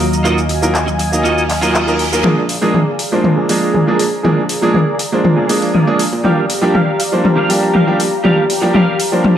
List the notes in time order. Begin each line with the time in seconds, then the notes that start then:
Already playing: D#2 F#3 D#5 F5 A#5
0.00 open hi-hat
0.13 shaker
0.24 F#3 A#3 D#4 F4 F#4 A#4 D#5 G#5, shaker
0.38 shaker
0.49 muted clean electric guitar stroke, open hi-hat
0.62 F#3 A#3 D#4 F4 A#4, shaker
0.74 muted clean electric guitar stroke, clap, shaker
0.86 muted clean electric guitar stroke, shaker
0.99 muted clean electric guitar stroke, open hi-hat
1.12 F#3 A#3 D#4 D#5 F5, shaker
1.23 F4 F#4 D#5, reverse cymbal, shaker
1.38 shaker
1.50 clap, open hi-hat
1.61 F#3 A#3 D#4 F4 F#4 A#4 D#5, open hi-hat, shaker
1.75 clap, shaker
1.87 F#3 A#3 D#4 F4 A#4, shaker
1.99 open hi-hat
2.12 F#3 A#3 D#4 F4 A#4, shaker
2.23 A#1 F3 G#3 A#3 D4 G#4 A#4 D5 F5 A#5, mid tom
2.49 open hi-hat
2.61 A#2 F3 G#3 A#3 D4 G#4, muted clean electric guitar stroke
2.73 A#1 G#4 A#4 D5, mid tom
2.99 open hi-hat
3.12 A#1 F3 G#3 A#3 D4 C5
3.23 A#1, muted clean electric guitar stroke, mid tom
3.36 G#4 A#4 D5
3.49 G#1 F3 G#3 A#3 D4 G#4, open hi-hat
3.61 muted clean electric guitar stroke
3.74 G#4 A#4 D5, mid tom
3.87 F3 G#3 A#3 D4 G#4
3.99 A#1, open hi-hat
4.23 A#1 F3 G#3 A#3 D4 G#4 A#4 D5, mid tom
4.49 open hi-hat
4.61 A#2 F3 G#3 A#3 D4 G#4, muted clean electric guitar stroke
4.74 A#1 G#4 A#4 D5, mid tom
4.99 muted fingered electric bass stroke, open hi-hat
5.12 A#1 F3 G#3 A#3 D4 C5
5.24 A#2, muted clean electric guitar stroke, mid tom
5.37 G#4 A#4 D5
5.49 F2 F3 G#3 A#3 D4 G#4, open hi-hat
5.62 muted clean electric guitar stroke, open hi-hat
5.74 G#4 A#4 D5, mid tom
5.87 A#1 F3 G#3 A#3 D4 G#4
5.99 muted fingered electric bass stroke, open hi-hat
6.13 A#2
6.24 F3 G3 A#3 D4 G4 A#4 F5, mid tom
6.50 open hi-hat
6.61 G2 F3 G3 A#3 D4 G4, muted clean electric guitar stroke
6.74 G4 A#4 F5, mid tom
7.00 open hi-hat
7.12 G1 F3 G3 A#3 D4 C5
7.24 G1, muted clean electric guitar stroke, mid tom
7.37 G4 A#4 F5
7.49 F1 F3 G3 A#3 D4 G4, open hi-hat
7.61 muted clean electric guitar stroke
7.74 G4 A#4 F5, mid tom
7.87 F3 G3 A#3 D4 G4
8.00 G1, open hi-hat
8.24 G1 F3 G3 A#3 D4 G4 A#4 F5, mid tom
8.50 open hi-hat
8.61 G2 F3 G3 A#3 D4 G4, muted clean electric guitar stroke
8.74 G1 G4 A#4 F5, mid tom
8.99 muted fingered electric bass stroke, open hi-hat
9.12 G1 F3 G3 A#3 D4 C5
9.24 G2, muted clean electric guitar stroke, mid tom